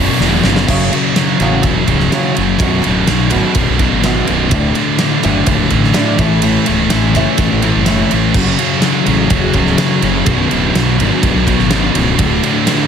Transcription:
Already playing: distorted electric guitar B1 F#2 B2, string machine F#4 B4 D5
0.20 fingered electric bass E1, distorted electric guitar B1 F#2 B2, snare
0.44 fingered electric bass F#1, distorted electric guitar B1 F#2 B2, snare
0.56 snare
0.68 fingered electric bass F#1, distorted electric guitar F#2 C#3 F#3, kick, crash
0.92 distorted electric guitar F#2 C#3 F#3, ride
1.16 distorted electric guitar F#2 C#3 F#3, snare, ride
1.40 fingered electric bass A1, distorted electric guitar F#2 C#3 F#3, ride
1.62 fingered electric bass E1, distorted electric guitar F#2 C#3 F#3, kick, ride
1.67 distorted electric guitar F#3
1.88 fingered electric bass C#1, distorted electric guitar F#2 C#3 F#3, kick, ride
2.00 snare
2.11 distorted electric guitar F#2 C#3 F#3, snare, ride
2.34 fingered electric bass F#1, distorted electric guitar F#2 C#3 F#3, ride
2.58 fingered electric bass B0, distorted electric guitar B1 F#2 B2, kick, ride
2.83 fingered electric bass D1, distorted electric guitar B1 F#2 B2, ride
3.07 distorted electric guitar B1 F#2 B2, fingered electric bass B1, snare, ride
3.29 distorted electric guitar B1 F#2 B2, ride
3.34 fingered electric bass G#1
3.54 fingered electric bass B0, distorted electric guitar B1 F#2 B2, kick, ride
3.69 fingered electric bass B1
3.78 distorted electric guitar B1 F#2 B2, kick, ride
3.92 fingered electric bass G#1
4.00 distorted electric guitar B1 F#2 B2, snare, ride
4.26 fingered electric bass B0, distorted electric guitar B1 F#2 B2, ride
4.51 fingered electric bass D1, distorted electric guitar D2 A2 D3, kick, ride
4.75 distorted electric guitar D2 A2 D3, ride
4.99 distorted electric guitar D2 A2 D3, snare, ride
5.22 fingered electric bass F#1, distorted electric guitar D2 A2 D3, ride
5.46 fingered electric bass C#1, distorted electric guitar D2 A2 D3, kick, ride
5.70 fingered electric bass A1, distorted electric guitar D2 A2 D3, kick, ride
5.84 snare
5.94 distorted electric guitar D2 A2 D3, snare, ride
6.18 fingered electric bass A1, distorted electric guitar A2 E3 A3, kick, ride
6.42 distorted electric guitar A2 E3 A3, ride
6.66 fingered electric bass C#1, distorted electric guitar A2 E3 A3, ride
6.89 fingered electric bass A1, distorted electric guitar A2 E3 A3, snare, ride
7.14 fingered electric bass F#1, distorted electric guitar A2 E3 A3, ride
7.38 fingered electric bass A1, distorted electric guitar A2 E3 A3, kick, ride
7.52 fingered electric bass A1
7.62 distorted electric guitar A2 E3 A3, ride
7.75 fingered electric bass F#1
7.86 distorted electric guitar A2 E3 A3, snare, ride
8.11 fingered electric bass A1, distorted electric guitar A2 E3 A3, ride
8.34 fingered electric bass F#1, distorted electric guitar F#2 C#3 F#3, string machine F#3 F#4 G#4 A4 E5, kick, crash
8.58 distorted electric guitar F#2 C#3 F#3, ride
8.81 distorted electric guitar F#2 C#3 F#3, snare, ride
9.06 fingered electric bass A1, distorted electric guitar F#2 C#3 F#3, ride
9.30 fingered electric bass E1, distorted electric guitar F#2 C#3 F#3, kick, ride
9.53 fingered electric bass C#1, distorted electric guitar F#2 C#3 F#3, kick, ride
9.66 snare
9.78 distorted electric guitar F#2 C#3 F#3, snare, ride
10.02 fingered electric bass F#1, distorted electric guitar F#2 C#3 F#3, ride
10.26 fingered electric bass B0, distorted electric guitar B1 F#2 B2, string machine D4 F#4 B4, kick, ride
10.51 fingered electric bass D1, distorted electric guitar B1 F#2 B2, ride
10.75 distorted electric guitar B1 F#2 B2, fingered electric bass B1, snare, ride
11.00 fingered electric bass G#1, distorted electric guitar B1 F#2 B2, ride
11.23 fingered electric bass B0, distorted electric guitar B1 F#2 B2, kick, ride
11.35 fingered electric bass B1
11.47 distorted electric guitar B1 F#2 B2, kick, ride
11.59 fingered electric bass G#1, snare
11.71 distorted electric guitar B1 F#2 B2, snare, ride
11.95 fingered electric bass C#1, distorted electric guitar B1 F#2 B2, ride
12.16 fingered electric bass D1, distorted electric guitar D2 A2, string machine D3 F#4 A4 A5, kick, ride
12.20 distorted electric guitar D3
12.43 distorted electric guitar D2 A2 D3, ride
12.65 distorted electric guitar D2 D3, snare, ride
12.69 distorted electric guitar D2 A2 D3

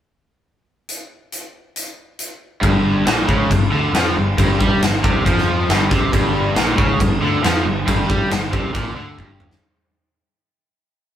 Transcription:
0.89 closed hi-hat
1.32 closed hi-hat
1.76 closed hi-hat
2.19 closed hi-hat
2.61 fingered electric bass G1, overdriven electric guitar G2, kick, crash
3.06 fingered electric bass A#1, overdriven electric guitar A#2, snare, crash
3.28 fingered electric bass C#2, overdriven electric guitar C#3, kick
3.50 fingered electric bass G1, overdriven electric guitar G2, kick, crash
3.71 fingered electric bass D2, overdriven electric guitar D3
3.94 fingered electric bass F2, overdriven electric guitar F3, snare, crash
4.16 fingered electric bass G1, overdriven electric guitar G2
4.38 fingered electric bass G1, overdriven electric guitar G2, kick, crash
4.59 fingered electric bass G2, overdriven electric guitar G3, kick
4.81 fingered electric bass G1, overdriven electric guitar G2, snare, crash
5.04 fingered electric bass C2, overdriven electric guitar C3, kick
5.25 fingered electric bass F2, overdriven electric guitar F3, kick, crash
5.38 snare
5.69 fingered electric bass G1, overdriven electric guitar G2, snare, crash
5.90 fingered electric bass C2, overdriven electric guitar C3, kick, snare
6.12 fingered electric bass G1, overdriven electric guitar G2, kick, crash
6.56 fingered electric bass A#1, overdriven electric guitar A#2, snare, crash
6.78 fingered electric bass C#2, overdriven electric guitar C#3, kick
7.00 fingered electric bass G1, overdriven electric guitar G2, kick, crash
7.22 fingered electric bass D2, overdriven electric guitar D3
7.43 fingered electric bass F2, overdriven electric guitar F3, snare, crash
7.65 fingered electric bass G1, overdriven electric guitar G2
7.86 fingered electric bass G1, overdriven electric guitar G2, kick, crash
8.09 fingered electric bass G2, overdriven electric guitar G3, kick
8.30 fingered electric bass G1, overdriven electric guitar G2, snare, crash
8.52 fingered electric bass C2, overdriven electric guitar C3, kick
8.73 fingered electric bass A#1, overdriven electric guitar A#2, kick, crash
8.95 fingered electric bass D2, overdriven electric guitar D3
9.17 fingered electric bass G1, overdriven electric guitar G2, kick
9.40 mid tom
9.51 snare

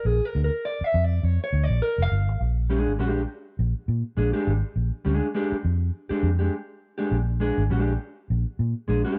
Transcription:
0.05 fingered electric bass A#1, clean electric guitar G#4
0.25 clean electric guitar A#4
0.35 fingered electric bass D2
0.44 clean electric guitar A#4
0.65 clean electric guitar D5
0.81 clean electric guitar E5, muted fingered electric bass stroke
0.94 fingered electric bass F2
1.04 clean electric guitar D5
1.23 fingered electric bass F2, clean electric guitar C#5
1.44 clean electric guitar C#5
1.53 fingered electric bass D2
1.64 clean electric guitar D5
1.69 fingered electric bass A#1
1.82 clean electric guitar A#4
1.98 fingered electric bass F1
2.02 clean electric guitar F5
2.12 fingered electric bass G1
2.28 fingered electric bass G#1
2.41 fingered electric bass A#1
2.70 clean electric guitar G#3 D4 G#4
2.87 fingered electric bass G#1
2.99 fingered electric bass A#1, clean electric guitar G#3 D4 G4
3.59 fingered electric bass A#1
3.88 fingered electric bass A#2
4.17 fingered electric bass A#1, clean electric guitar G#3 D4 G#4
4.33 clean electric guitar G#3 D4 G4
4.47 fingered electric bass G#1
4.76 fingered electric bass A#1
5.05 fingered electric bass D2, clean electric guitar G#3 D4 G#4
5.34 clean electric guitar G#3 D4 G4
5.52 muted fingered electric bass stroke
5.65 fingered electric bass F2
6.09 clean electric guitar G#3 D4 G4, muted fingered electric bass stroke
6.23 fingered electric bass F2
6.39 clean electric guitar G#3 D4 G4
6.98 clean electric guitar G#3 D4 G4
7.11 fingered electric bass A#1
7.40 clean electric guitar G#3 D4 G#4
7.58 fingered electric bass G#1
7.70 fingered electric bass A#1, clean electric guitar G#3 D4 G4
8.30 fingered electric bass A#1
8.59 fingered electric bass A#2
8.88 fingered electric bass A#1, clean electric guitar G#3 D4 G#4
9.05 clean electric guitar G#3 D4 G4

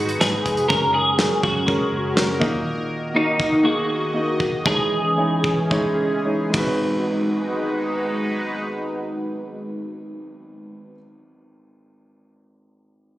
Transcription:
Already playing: fingered electric bass G#1, grand piano G#2 D#3 G#3 D#4 F#4 G#4 B4, analog synth pad G#3 D#4 F#4 B4, clean electric guitar F#4
0.09 closed hi-hat
0.20 fingered electric bass G#1, grand piano G#3 D#4 F#4 B4, clean electric guitar G#4, snare, clap, closed hi-hat
0.46 fingered electric bass F1, kick, closed hi-hat
0.57 closed hi-hat
0.69 fingered electric bass F#1, grand piano C#3 G#3 C#4 F#4 A#4, analog synth pad F#3 C#4 G#4 A#4, clean electric guitar A#4, kick
0.94 clean electric guitar G#4
1.18 grand piano G#3 C#4 F#4 A#4, snare, clap
1.43 fingered electric bass F#1, clean electric guitar F#4, kick
1.66 grand piano G#3 C#4 F#4 A#4, kick
1.92 fingered electric bass F#1
2.15 fingered electric bass F#1, grand piano G#3 C#4 F#4 A#4, snare, clap
2.39 fingered electric bass D#2, grand piano A#2 A#3 D#4 F#4 D#5, analog synth pad D#3 F#4 D#5, kick
3.14 grand piano A#3 D#4 F#4 D#5, clean electric guitar D#4
3.40 kick
3.63 grand piano A#3 D#4 F#4 G#4, clean electric guitar F#4
4.13 grand piano A#3 D#4 F#4 D#5
4.40 kick
4.65 grand piano E3 G#3 D#4 E4 C#5, analog synth pad E3 C#4 G#4, clean electric guitar G#4, kick
5.16 grand piano G#3 D#4 E4 C#5
5.44 kick
5.70 grand piano G#3 D#4 E4 C#5, kick
6.25 grand piano G#3 D#4 E4 C#5
6.50 grand piano G#3 D#4, analog synth pad G#3 D#4 F#4
6.54 grand piano G#1 F#4 B4, analog synth pad B4, kick, ride

